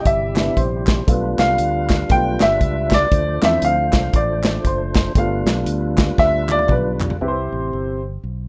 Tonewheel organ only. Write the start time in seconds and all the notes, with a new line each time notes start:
Already playing: C3 G3 E4 G4
1.07 G3 D4 F4 A4
1.13 B4
3.12 F3 A3 D4 C5
5.17 G3 D4 F4 B4